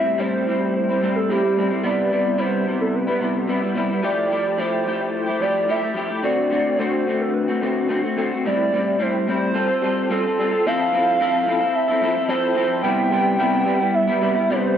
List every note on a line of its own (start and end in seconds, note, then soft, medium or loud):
0.00 0.16 A2 medium
0.00 0.17 G3 medium
0.00 0.18 C4 medium
0.00 0.18 E4 medium
0.00 0.21 E5 loud
0.18 0.45 A2 medium
0.18 0.46 G3 medium
0.18 0.46 C4 medium
0.18 0.46 E4 medium
0.18 0.74 C5 loud
0.47 0.88 A2 medium
0.47 0.88 G3 medium
0.47 0.89 C4 medium
0.47 0.88 E4 medium
0.76 1.17 C5 loud
0.89 1.01 G3 soft
0.89 1.02 C4 soft
0.89 1.02 E4 soft
1.02 1.28 A2 medium
1.02 1.29 G3 medium
1.02 1.29 C4 medium
1.02 1.30 E4 medium
1.15 1.32 A4 medium
1.29 1.42 A2 medium
1.29 1.43 G3 medium
1.29 1.43 C4 medium
1.29 1.42 E4 medium
1.29 1.71 G4 medium
1.43 1.57 G3 soft
1.43 1.57 C4 soft
1.43 1.56 E4 soft
1.57 1.70 A2 medium
1.57 1.71 G3 medium
1.57 1.70 C4 medium
1.57 1.69 E4 medium
1.70 1.82 G3 soft
1.70 1.83 C4 soft
1.70 1.84 E4 soft
1.83 2.10 C3 medium
1.83 2.11 G3 medium
1.83 2.11 B3 medium
1.83 2.12 E4 medium
1.83 2.41 D5 loud
2.11 2.36 C3 medium
2.11 2.37 G3 medium
2.11 2.37 B3 medium
2.11 2.37 E4 medium
2.38 2.65 C3 medium
2.38 2.66 G3 medium
2.38 2.66 B3 medium
2.38 2.66 E4 medium
2.38 2.80 C5 medium
2.66 3.07 C3 medium
2.66 3.08 G3 medium
2.66 3.07 B3 medium
2.66 3.06 E4 medium
2.81 2.96 A4 medium
2.95 3.49 B4 medium
3.07 3.19 G3 soft
3.07 3.20 B3 soft
3.07 3.21 E4 soft
3.20 3.46 C3 medium
3.20 3.47 G3 medium
3.20 3.48 B3 medium
3.20 3.48 E4 medium
3.48 3.62 C3 medium
3.48 3.62 G3 medium
3.48 3.61 B3 medium
3.48 3.60 E4 medium
3.61 3.74 G3 soft
3.61 3.76 B3 soft
3.61 3.75 E4 medium
3.74 3.89 C3 medium
3.74 3.89 G3 medium
3.74 3.89 B3 medium
3.74 3.88 E4 medium
3.89 4.02 G3 soft
3.89 4.03 B3 soft
3.89 4.03 E4 soft
4.02 4.29 F3 medium
4.02 4.31 A3 medium
4.02 4.31 E4 medium
4.02 4.31 G4 medium
4.02 4.60 D5 loud
4.30 4.57 F3 medium
4.30 4.57 A3 medium
4.30 4.58 E4 medium
4.30 4.59 G4 medium
4.58 4.85 F3 medium
4.58 4.86 A3 medium
4.58 4.87 E4 medium
4.58 4.87 G4 medium
4.58 5.13 C5 loud
4.86 5.27 F3 medium
4.86 5.27 A3 medium
4.86 5.26 E4 medium
4.86 5.25 G4 medium
5.14 5.43 C5 loud
5.26 5.41 A3 soft
5.26 5.41 E4 soft
5.26 5.41 G4 soft
5.40 5.67 F3 medium
5.40 5.68 A3 medium
5.40 5.68 E4 medium
5.40 5.68 G4 medium
5.40 5.71 D5 loud
5.68 5.82 F3 medium
5.68 5.83 A3 medium
5.68 5.82 E4 medium
5.68 5.80 G4 medium
5.68 6.11 E5 loud
5.81 5.94 A3 soft
5.81 5.95 E4 soft
5.81 5.96 G4 soft
5.94 6.09 F3 medium
5.94 6.09 A3 medium
5.94 6.09 E4 medium
5.94 6.07 G4 medium
6.09 6.22 A3 soft
6.09 6.24 E4 soft
6.09 6.23 G4 soft
6.23 6.48 D3 medium
6.23 6.50 A3 medium
6.23 6.51 C4 medium
6.23 6.51 F#4 medium
6.23 6.80 D5 loud
6.50 6.77 D3 medium
6.50 6.78 A3 medium
6.50 6.79 C4 medium
6.50 6.79 F#4 medium
6.78 7.06 D3 medium
6.78 7.07 A3 medium
6.78 7.07 C4 medium
6.78 7.07 F#4 medium
6.78 7.23 C5 medium
7.07 7.48 D3 medium
7.07 7.48 A3 medium
7.07 7.48 C4 medium
7.07 7.47 F#4 medium
7.21 7.35 A4 medium
7.33 7.89 B4 medium
7.48 7.61 A3 soft
7.48 7.61 C4 soft
7.48 7.62 F#4 medium
7.61 7.87 D3 medium
7.61 7.88 A3 medium
7.61 7.89 C4 medium
7.61 7.89 F#4 medium
7.89 8.03 D3 medium
7.89 8.03 A3 medium
7.89 8.03 C4 medium
7.89 8.01 F#4 medium
8.02 8.16 A3 soft
8.02 8.17 C4 medium
8.02 8.16 F#4 medium
8.17 8.30 D3 medium
8.17 8.31 A3 medium
8.17 8.31 C4 medium
8.17 8.30 F#4 medium
8.32 8.45 A3 soft
8.32 8.45 C4 soft
8.32 8.45 F#4 soft
8.45 8.71 A2 medium
8.45 8.72 G3 medium
8.45 8.72 C4 medium
8.45 8.73 E4 medium
8.45 9.03 D5 loud
8.72 8.98 A2 medium
8.72 8.98 G3 medium
8.72 8.99 C4 medium
8.72 8.99 E4 medium
8.99 9.26 A2 medium
8.99 9.26 G3 medium
8.99 9.27 C4 medium
8.99 9.27 E4 medium
8.99 9.28 C5 loud
9.27 9.54 A2 medium
9.27 9.53 G3 medium
9.27 9.53 C4 medium
9.27 9.54 E4 medium
9.27 10.07 C5 medium
9.54 9.68 G3 medium
9.54 9.68 C4 medium
9.54 9.67 F4 medium
9.54 9.66 A4 medium
9.67 9.81 C4 soft
9.67 9.82 F4 soft
9.67 9.81 A4 medium
9.82 10.09 G3 medium
9.82 10.09 C4 medium
9.82 10.10 F4 medium
9.82 10.10 A4 medium
10.10 10.23 G3 medium
10.10 10.24 C4 medium
10.10 10.24 F4 medium
10.10 10.67 A4 medium
10.10 10.24 A4 medium
10.25 10.38 C4 soft
10.25 10.39 F4 soft
10.25 10.38 A4 medium
10.38 10.51 G3 medium
10.38 10.52 C4 medium
10.38 10.51 F4 medium
10.38 10.50 A4 medium
10.51 10.66 C4 soft
10.51 10.65 F4 soft
10.51 10.65 A4 medium
10.66 10.91 F3 medium
10.66 10.92 C4 medium
10.66 10.93 E4 medium
10.66 10.94 A4 medium
10.66 11.76 F5 loud
10.93 11.18 F3 medium
10.93 11.20 C4 medium
10.93 11.20 E4 medium
10.93 11.21 A4 medium
11.20 11.46 F3 medium
11.20 11.46 C4 medium
11.20 11.47 E4 medium
11.20 11.48 A4 medium
11.47 11.61 F3 medium
11.47 11.61 C4 medium
11.47 11.61 E4 medium
11.47 11.59 A4 medium
11.61 11.89 C4 soft
11.61 11.88 E4 soft
11.61 11.87 A4 medium
11.75 12.30 E5 loud
11.88 12.01 C4 soft
11.88 12.02 E4 soft
11.88 12.02 A4 medium
12.01 12.15 F3 medium
12.01 12.16 C4 medium
12.01 12.14 E4 medium
12.01 12.13 A4 medium
12.15 12.27 C4 soft
12.15 12.28 E4 soft
12.15 12.28 A4 medium
12.28 12.54 F3 medium
12.28 12.55 C4 medium
12.28 12.56 E4 medium
12.28 12.56 A4 medium
12.28 12.82 C5 medium
12.55 12.83 F3 medium
12.55 12.84 C4 medium
12.55 12.83 E4 medium
12.55 12.85 A4 medium
12.83 13.09 C3 medium
12.83 13.10 G3 medium
12.83 13.12 B3 medium
12.83 13.12 E4 medium
12.83 13.95 G5 loud
13.10 13.37 C3 medium
13.10 13.38 G3 medium
13.10 13.38 B3 medium
13.10 13.39 E4 medium
13.39 13.64 C3 medium
13.39 13.64 G3 medium
13.39 13.66 B3 medium
13.39 13.67 E4 medium
13.65 13.80 C3 medium
13.65 13.79 G3 medium
13.65 13.79 B3 medium
13.65 13.77 E4 medium
13.78 14.08 G3 soft
13.78 14.07 B3 soft
13.78 14.06 E4 medium
13.94 14.52 E5 loud
14.08 14.20 G3 soft
14.08 14.21 B3 medium
14.08 14.22 E4 medium
14.21 14.35 C3 medium
14.21 14.35 G3 medium
14.21 14.35 B3 medium
14.21 14.34 E4 medium
14.35 14.49 G3 soft
14.35 14.50 B3 medium
14.35 14.49 E4 medium
14.50 14.77 C3 medium
14.50 14.77 G3 medium
14.50 14.78 B3 medium
14.50 14.78 E4 medium
14.50 14.78 C5 loud